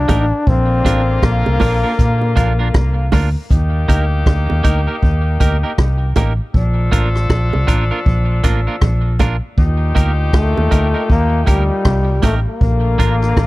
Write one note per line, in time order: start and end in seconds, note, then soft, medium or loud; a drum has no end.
0.00 0.50 D4 loud
0.08 0.31 A1 medium
0.08 0.24 A#3 medium
0.08 0.24 D#4 medium
0.08 0.25 G4 medium
0.08 0.25 A#4 medium
0.08 kick medium
0.08 closed hi-hat medium
0.08 high bongo medium
0.08 low bongo medium
0.47 0.82 A#1 loud
0.47 3.09 D3 medium
0.47 3.09 A#3 medium
0.47 1.25 C4 loud
0.47 3.09 F4 medium
0.47 kick loud
0.85 1.20 A1 medium
0.85 1.01 A#3 medium
0.85 1.01 D4 medium
0.85 1.01 F4 medium
0.85 1.01 A#4 medium
0.85 kick medium
0.85 closed hi-hat medium
0.85 high bongo medium
1.22 1.45 A#1 medium
1.22 3.13 A#3 medium
1.22 kick loud
1.22 cross-stick loud
1.22 high bongo medium
1.46 1.60 C2 medium
1.46 high bongo medium
1.60 1.83 A#1 medium
1.60 1.76 A#3 medium
1.60 1.76 D4 medium
1.60 1.77 F4 medium
1.60 1.77 A#4 medium
1.60 kick medium
1.60 open hi-hat medium
1.60 low bongo medium
1.83 1.92 A#3 soft
1.83 1.92 D4 medium
1.83 1.92 F4 soft
1.83 1.92 A#4 medium
1.99 2.34 A#2 medium
1.99 kick loud
1.99 hi-hat pedal medium
2.22 high bongo soft
2.36 2.72 A#1 medium
2.36 2.52 A#3 medium
2.36 2.52 D4 medium
2.36 2.52 F4 medium
2.36 2.52 A#4 medium
2.36 kick loud
2.36 closed hi-hat medium
2.59 2.68 A#3 soft
2.59 2.68 D4 medium
2.59 2.67 F4 medium
2.59 2.67 A#4 medium
2.74 3.10 C2 medium
2.74 kick loud
2.74 cross-stick loud
2.74 high bongo medium
3.12 3.34 D2 medium
3.12 3.28 A#3 medium
3.12 3.28 D4 medium
3.12 3.28 F4 medium
3.12 3.29 A#4 medium
3.12 kick medium
3.12 cross-stick medium
3.12 open hi-hat medium
3.12 high bongo medium
3.12 low bongo medium
3.50 3.86 D#2 medium
3.50 6.12 A#3 medium
3.50 6.12 D#4 medium
3.50 6.12 G4 medium
3.50 kick loud
3.50 hi-hat pedal medium
3.88 4.24 D2 medium
3.88 4.04 A#3 medium
3.88 4.04 D#4 medium
3.88 4.04 G4 medium
3.88 4.05 A#4 medium
3.88 kick medium
3.88 closed hi-hat medium
4.26 4.48 D2 loud
4.26 kick loud
4.26 cross-stick loud
4.26 high bongo medium
4.50 4.64 D#2 medium
4.50 high bongo medium
4.64 4.86 D2 medium
4.64 4.80 A#3 medium
4.64 4.80 D#4 medium
4.64 4.80 G4 medium
4.64 4.80 A#4 medium
4.64 kick medium
4.64 closed hi-hat medium
4.87 4.96 A#3 soft
4.87 4.96 D#4 soft
4.87 4.95 G4 medium
4.87 4.95 A#4 medium
5.03 5.38 D#2 medium
5.03 kick loud
5.40 5.62 D2 medium
5.40 5.56 A#3 medium
5.40 5.56 D#4 medium
5.40 5.56 G4 medium
5.40 5.57 A#4 medium
5.40 kick loud
5.40 closed hi-hat medium
5.63 5.72 A#3 medium
5.63 5.72 D#4 medium
5.63 5.71 G4 medium
5.63 5.71 A#4 medium
5.78 6.14 C2 medium
5.78 kick loud
5.78 cross-stick loud
5.78 high bongo medium
6.15 6.38 A1 medium
6.15 6.32 A#3 medium
6.15 6.32 D#4 medium
6.15 6.32 G4 medium
6.15 6.33 A#4 medium
6.15 kick medium
6.15 closed hi-hat medium
6.15 high bongo medium
6.15 low bongo medium
6.54 6.90 A#1 loud
6.54 9.16 F3 medium
6.54 9.16 D4 medium
6.54 9.16 A4 medium
6.54 kick loud
6.92 7.28 A1 medium
6.92 7.08 A#3 medium
6.92 7.08 D4 medium
6.92 7.08 F4 medium
6.92 7.08 A#4 medium
6.92 kick medium
6.92 closed hi-hat medium
7.15 cross-stick medium
7.30 7.52 A#1 medium
7.30 kick loud
7.30 cross-stick loud
7.30 high bongo medium
7.53 7.68 C2 medium
7.53 high bongo medium
7.67 7.90 A1 medium
7.67 7.83 A#3 medium
7.67 7.83 D4 medium
7.67 7.84 F4 loud
7.67 7.84 A#4 loud
7.67 kick medium
7.67 closed hi-hat medium
7.91 7.99 A#3 soft
7.91 7.99 D4 medium
7.91 7.99 F4 medium
7.91 7.99 A#4 medium
8.06 8.41 A#1 medium
8.06 kick loud
8.43 8.66 A1 medium
8.43 8.59 A#3 medium
8.43 8.60 D4 loud
8.43 8.60 F4 medium
8.43 8.60 A#4 loud
8.43 kick medium
8.43 closed hi-hat medium
8.67 8.76 A#3 soft
8.67 8.75 D4 medium
8.67 8.75 F4 medium
8.67 8.75 A#4 medium
8.81 9.39 A#1 medium
8.81 kick loud
8.81 cross-stick loud
8.81 high bongo medium
9.19 9.35 A#3 medium
9.19 9.35 D4 medium
9.19 9.36 F4 medium
9.19 9.36 A#4 loud
9.19 kick medium
9.19 closed hi-hat medium
9.19 high bongo medium
9.19 low bongo medium
9.57 9.93 D#2 loud
9.57 12.19 A#2 medium
9.57 12.19 D#4 medium
9.57 12.19 G4 medium
9.57 kick loud
9.95 10.31 D2 medium
9.95 10.11 A#3 medium
9.95 10.11 D#4 medium
9.95 10.11 G4 medium
9.95 10.12 A#4 medium
9.95 kick medium
9.95 closed hi-hat medium
10.33 10.55 D2 medium
10.33 11.06 A3 loud
10.33 kick loud
10.33 cross-stick loud
10.33 high bongo medium
10.57 10.71 D#2 medium
10.57 high bongo medium
10.71 10.93 D2 medium
10.71 10.87 A#3 medium
10.71 10.87 D#4 medium
10.71 10.87 G4 medium
10.71 10.87 A#4 medium
10.71 kick medium
10.71 closed hi-hat medium
10.94 11.03 A#3 soft
10.94 11.02 D#4 medium
10.94 11.02 G4 medium
10.94 11.02 A#4 medium
11.10 11.45 D#2 loud
11.10 11.50 A#3 loud
11.10 kick loud
11.47 11.69 D2 medium
11.47 12.24 G3 medium
11.47 11.63 A#3 medium
11.47 11.63 D#4 medium
11.47 11.63 G4 medium
11.47 11.63 A#4 medium
11.47 kick medium
11.47 closed hi-hat medium
11.85 12.21 C2 medium
11.85 kick loud
11.85 cross-stick loud
11.85 high bongo medium
12.22 12.45 A1 medium
12.22 12.35 A3 medium
12.22 12.38 A#3 medium
12.22 12.39 D#4 medium
12.22 12.39 G4 medium
12.22 12.39 A#4 loud
12.22 kick medium
12.22 closed hi-hat medium
12.22 high bongo medium
12.22 low bongo medium
12.48 13.47 A#3 loud
12.61 12.96 A#1 medium
12.61 13.47 D3 medium
12.61 13.47 A#3 medium
12.61 13.47 F4 medium
12.61 kick loud
12.98 13.34 A1 medium
12.98 13.14 A#3 medium
12.98 13.15 D4 medium
12.98 13.15 F4 medium
12.98 13.15 A#4 medium
12.98 kick medium
12.98 closed hi-hat medium
13.22 cross-stick medium
13.37 13.47 A#1 medium
13.37 kick loud
13.37 cross-stick medium
13.37 high bongo medium